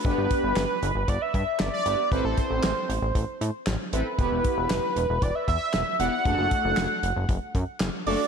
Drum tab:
HH |xxxxxxxx|xxxxxxxx|xxxxxxxx|xxxxxxxo|
CP |--x---x-|--x---x-|--x---x-|--x---x-|
SD |--o---o-|--o---o-|--o---o-|--o---o-|
BD |oo--oo--|oo--o---|oo--oo--|oo--oo--|